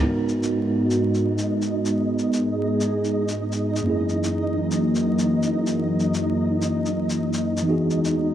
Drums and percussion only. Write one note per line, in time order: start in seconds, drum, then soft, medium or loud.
0.29 shaker soft
0.43 shaker medium
0.90 shaker soft
1.14 shaker soft
1.38 shaker medium
1.62 shaker soft
1.85 shaker soft
2.19 shaker soft
2.33 shaker soft
2.81 shaker soft
3.04 shaker soft
3.28 shaker soft
3.52 shaker soft
3.76 shaker medium
4.09 shaker soft
4.24 shaker soft
4.71 shaker soft
4.95 shaker soft
5.19 shaker medium
5.43 shaker soft
5.66 shaker soft
6.00 shaker soft
6.14 shaker soft
6.62 shaker soft
6.86 shaker soft
7.10 shaker soft
7.33 shaker soft
7.57 shaker soft
7.90 shaker soft
8.05 shaker soft